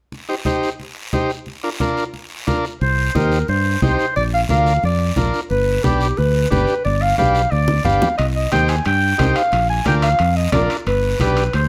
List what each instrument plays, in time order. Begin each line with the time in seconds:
0.12 high conga, long guiro
0.29 transistor combo organ D#4 G4 C5
0.45 transistor combo organ D#4 G4 C5, high conga, short guiro
0.63 short guiro
0.80 high conga, long guiro
1.13 transistor combo organ D#4 G4 C5, high conga, short guiro
1.30 short guiro
1.46 high conga, long guiro
1.63 transistor combo organ D4 F4 A#4
1.80 transistor combo organ D4 F4 A#4, high conga, short guiro
1.97 short guiro
2.14 high conga, long guiro
2.47 transistor combo organ D4 F4 A#4, high conga, short guiro
2.65 short guiro
2.81 fingered electric bass C2, clarinet C5, high conga, long guiro
3.15 fingered electric bass D#2, transistor combo organ D#4 G4 C5, clarinet A#4, high conga, short guiro
3.32 short guiro
3.48 fingered electric bass G2, clarinet C5, high conga, long guiro
3.82 fingered electric bass C2, transistor combo organ D#4 G4 C5, clarinet C5, high conga, short guiro
3.99 short guiro
4.16 fingered electric bass A#1, clarinet D5, high conga, long guiro
4.34 clarinet F5
4.49 fingered electric bass D2, transistor combo organ D4 F4 A#4, clarinet F5, high conga, short guiro
4.66 short guiro
4.83 fingered electric bass F2, clarinet D5, high conga, long guiro
5.16 fingered electric bass A#1, transistor combo organ D4 F4 A#4, high conga, short guiro
5.34 short guiro
5.50 fingered electric bass G1, clarinet B4, high conga, long guiro
5.84 fingered electric bass B1, transistor combo organ D4 G4 B4, clarinet G4, high conga, short guiro
6.01 short guiro
6.17 fingered electric bass D2, clarinet B4, high conga, long guiro
6.50 fingered electric bass G1, transistor combo organ D4 G4 B4, clarinet B4, high conga, short guiro
6.67 short guiro
6.84 fingered electric bass G1, clarinet D5, high conga, long guiro
7.01 clarinet F5
7.18 fingered electric bass B1, transistor combo organ D4 G4 B4, clarinet F5, high conga, short guiro
7.35 short guiro
7.51 fingered electric bass D2, clarinet D5, high conga, long guiro
7.68 high conga
7.85 fingered electric bass G1, transistor combo organ D4 G4 B4, clarinet F5, low conga, short guiro
8.02 low conga, short guiro
8.18 fingered electric bass C2, clarinet D#5, high conga, high timbale, long guiro
8.35 clarinet D#5
8.52 fingered electric bass D#2, transistor combo organ D#4 G4 C5, clarinet G5, high conga, high timbale, short guiro
8.68 clarinet G#5, high timbale, short guiro
8.85 fingered electric bass G2, clarinet G5, high conga, high timbale, long guiro
9.18 fingered electric bass C2, transistor combo organ D#4 G4 C5, high conga, high timbale, low timbale, short guiro
9.36 clarinet F5, high timbale, short guiro
9.52 fingered electric bass A#1, high conga, high timbale, long guiro
9.69 clarinet G#5
9.85 fingered electric bass D2, transistor combo organ D4 F4 A#4, clarinet G5, high conga, high timbale, short guiro
10.02 clarinet F5, high timbale, short guiro
10.19 fingered electric bass F2, high conga, high timbale, long guiro
10.36 clarinet D#5
10.52 fingered electric bass A#1, transistor combo organ D4 F4 A#4, clarinet D5, high conga, high timbale, low timbale, short guiro
10.70 high timbale, short guiro
10.86 fingered electric bass G1, clarinet B4, high conga, high timbale, long guiro
11.20 fingered electric bass B1, transistor combo organ D4 G4 B4, clarinet B4, high conga, high timbale, short guiro
11.37 high timbale, short guiro
11.53 fingered electric bass D2, clarinet C5, high conga, high timbale, long guiro